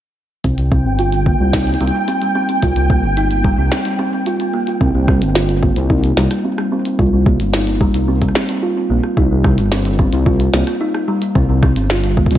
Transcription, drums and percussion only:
0.44 kick loud
0.44 closed hi-hat medium
0.58 closed hi-hat soft
0.72 kick loud
0.99 closed hi-hat medium
1.12 closed hi-hat medium
1.26 kick loud
1.53 kick loud
1.53 snare loud
1.53 closed hi-hat medium
1.67 closed hi-hat soft
1.74 closed hi-hat soft
1.81 closed hi-hat soft
1.88 closed hi-hat soft
2.08 closed hi-hat medium
2.22 closed hi-hat medium
2.49 closed hi-hat soft
2.63 kick loud
2.63 closed hi-hat medium
2.76 closed hi-hat soft
2.90 kick loud
3.17 closed hi-hat medium
3.31 closed hi-hat medium
3.44 kick loud
3.72 snare loud
3.72 closed hi-hat medium
3.85 closed hi-hat medium
4.26 closed hi-hat medium
4.40 closed hi-hat medium
4.67 closed hi-hat soft
4.81 kick loud
5.08 kick loud
5.08 cross-stick medium
5.22 closed hi-hat medium
5.35 snare loud
5.49 closed hi-hat medium
5.63 kick loud
5.76 closed hi-hat medium
5.90 kick loud
6.04 closed hi-hat medium
6.17 snare loud
6.31 cross-stick medium
6.31 closed hi-hat medium
6.58 cross-stick medium
6.85 closed hi-hat medium
6.99 kick loud
7.26 kick loud
7.40 closed hi-hat medium
7.54 snare loud
7.67 closed hi-hat medium
7.81 kick loud
7.94 closed hi-hat medium
8.22 kick medium
8.22 closed hi-hat medium
8.29 cross-stick soft
8.35 cross-stick medium
8.35 snare loud
8.49 closed hi-hat medium
9.03 cross-stick soft
9.17 kick loud
9.44 kick loud
9.44 cross-stick medium
9.58 closed hi-hat medium
9.72 snare loud
9.85 closed hi-hat medium
9.99 kick loud
10.13 closed hi-hat medium
10.26 kick loud
10.40 closed hi-hat medium
10.54 snare loud
10.67 cross-stick soft
10.67 closed hi-hat medium
10.94 cross-stick medium
11.22 closed hi-hat medium
11.35 kick loud
11.63 kick loud
11.63 cross-stick medium
11.76 closed hi-hat medium
11.90 snare loud
12.04 closed hi-hat soft
12.17 kick loud
12.26 kick medium
12.31 closed hi-hat medium

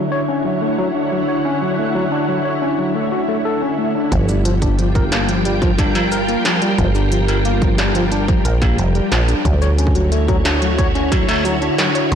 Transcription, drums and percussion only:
4.12 kick loud
4.12 closed hi-hat medium
4.29 closed hi-hat soft
4.29 cabasa medium
4.45 closed hi-hat loud
4.62 kick medium
4.62 closed hi-hat medium
4.79 closed hi-hat medium
4.95 kick loud
4.95 closed hi-hat soft
5.12 snare loud
5.12 closed hi-hat loud
5.29 closed hi-hat medium
5.45 closed hi-hat medium
5.62 kick loud
5.62 closed hi-hat soft
5.78 kick loud
5.78 closed hi-hat loud
5.78 struck metal medium
5.95 closed hi-hat medium
5.95 struck metal medium
6.12 closed hi-hat medium
6.12 cabasa medium
6.29 closed hi-hat soft
6.45 snare loud
6.45 closed hi-hat loud
6.62 closed hi-hat medium
6.78 kick loud
6.78 closed hi-hat medium
6.95 closed hi-hat soft
6.95 cabasa medium
7.12 closed hi-hat loud
7.28 closed hi-hat medium
7.28 struck metal soft
7.45 closed hi-hat medium
7.62 kick loud
7.62 closed hi-hat soft
7.78 snare loud
7.78 closed hi-hat loud
7.95 closed hi-hat medium
8.12 closed hi-hat medium
8.28 kick loud
8.28 closed hi-hat soft
8.45 closed hi-hat loud
8.62 kick loud
8.62 closed hi-hat medium
8.62 struck metal medium
8.78 closed hi-hat medium
8.95 closed hi-hat soft
9.12 snare loud
9.12 closed hi-hat medium
9.28 closed hi-hat medium
9.28 cabasa medium
9.45 kick loud
9.45 closed hi-hat medium
9.62 closed hi-hat soft
9.62 cabasa medium
9.78 closed hi-hat medium
9.87 kick medium
9.95 closed hi-hat medium
10.12 closed hi-hat medium
10.28 kick loud
10.28 closed hi-hat soft
10.45 snare loud
10.45 closed hi-hat medium
10.62 closed hi-hat medium
10.78 kick loud
10.78 closed hi-hat medium
10.95 closed hi-hat soft
11.12 kick loud
11.12 closed hi-hat loud
11.12 struck metal medium
11.29 closed hi-hat medium
11.29 struck metal medium
11.31 struck metal medium
11.33 struck metal soft
11.36 struck metal soft
11.38 struck metal soft
11.40 struck metal soft
11.43 closed hi-hat medium
11.43 cabasa medium
11.43 struck metal soft
11.62 closed hi-hat soft
11.78 snare loud
11.78 closed hi-hat medium
11.95 closed hi-hat medium
12.12 kick loud
12.12 closed hi-hat medium

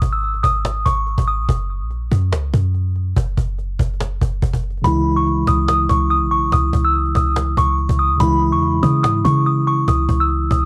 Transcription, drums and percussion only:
0.02 cajon bass medium
0.23 cajon slap soft
0.34 cajon slap soft
0.44 cajon bass loud
0.55 cajon slap soft
0.65 cajon slap loud
0.86 cajon bass loud
1.07 cajon slap soft
1.18 cajon bass medium
1.28 cajon slap soft
1.49 cajon bass loud
1.91 cajon slap soft
2.12 cajon bass loud
2.33 cajon slap loud
2.54 cajon bass medium
2.74 cajon slap soft
2.96 cajon slap soft
3.17 cajon bass loud
3.37 cajon bass medium
3.58 cajon slap soft
3.79 cajon bass loud
3.93 cajon slap soft
4.00 cajon slap loud
4.21 cajon bass medium
4.42 cajon bass loud
4.53 cajon bass medium
4.63 cajon slap soft
4.70 cajon slap soft
4.77 cajon slap soft
4.84 cajon bass loud
5.26 cajon slap soft
5.47 cajon bass loud
5.68 cajon slap loud
5.89 cajon bass loud
6.10 cajon slap soft
6.31 cajon slap soft
6.52 cajon bass loud
6.73 cajon bass medium
6.94 cajon slap soft
7.05 cajon slap soft
7.15 cajon bass loud
7.26 cajon slap soft
7.36 cajon slap loud
7.57 cajon bass loud
7.78 cajon slap soft
7.89 cajon bass medium
7.99 cajon slap soft
8.20 cajon bass loud
8.62 cajon slap soft
8.83 cajon bass loud
9.04 cajon slap loud
9.25 cajon bass loud
9.46 cajon slap soft
9.67 cajon slap soft
9.88 cajon bass loud
10.09 cajon bass medium
10.30 cajon slap soft
10.51 cajon bass loud
10.58 cajon slap soft

